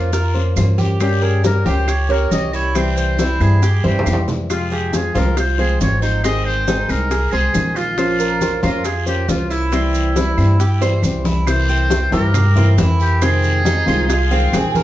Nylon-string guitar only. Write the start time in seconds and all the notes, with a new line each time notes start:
Already playing: A#3 C#4 F4 C5
0.13 muted nylon-string guitar stroke
0.35 A#3 C#4 F4 C5
0.57 A#3 C#4 F4 C5
1.01 G3 A#3 C#4 G4
1.44 G3 A#3 C#4 G4
1.65 A#3 C#4 G4
1.88 muted nylon-string guitar stroke
2.09 A#3 C#4 G4
2.31 G3 A#3 C#4 G4
2.75 C3 E3 G3 C4 E4
3.19 E3 G3 C4 E4
3.41 E3 G3 C4 E4
3.63 muted nylon-string guitar stroke
3.84 E3 G3 C4 E4
4.06 E3 G3 C4 E4
4.50 C3 F3 G#3 C4 F4
4.93 F3 G#3 C4 F4
5.15 F3 G#3 C4 F4
5.37 muted nylon-string guitar stroke
5.58 F3 G#3 C4 F4
5.80 F3 G#3 C4 F4
6.24 D#3 G#3 C4 G#4
6.68 D#3 G#3 C4 G#4
6.89 G#3 C4 G#4
7.11 muted nylon-string guitar stroke
7.32 G#3 C4 G#4
7.53 D#3 G#3 C4 G#4
7.98 F3 A#3 C#4 F4 C5
8.41 A#3 C#4 F4 C5
8.63 A#3 C#4 F4 C5
8.85 muted nylon-string guitar stroke
9.06 A#3 C#4 F4 C5
9.28 A#3 C#4 F4 C5
9.72 C3 E3 G3 C4 E4
10.16 E3 G3 C4 E4
10.38 E3 G3 C4 E4
10.60 muted nylon-string guitar stroke
10.81 E3 G3 C4 E4
11.03 E3 G3 C4 E4
11.47 C3 E3 A#3 C4 E4
11.90 E3 A#3 C4 E4
12.11 E3 A#3 C4 E4
12.34 muted nylon-string guitar stroke
12.56 E3 A#3 C4 E4
12.78 E3 A#3 C4 E4
13.21 C3 D#3 G#3 C4 F4
13.65 D#3 G#3 C4 F4
13.87 D#3 G#3 C4 F4
14.09 muted nylon-string guitar stroke
14.31 D#3 G#3 C4 F4
14.53 D#3 G#3 C4 F4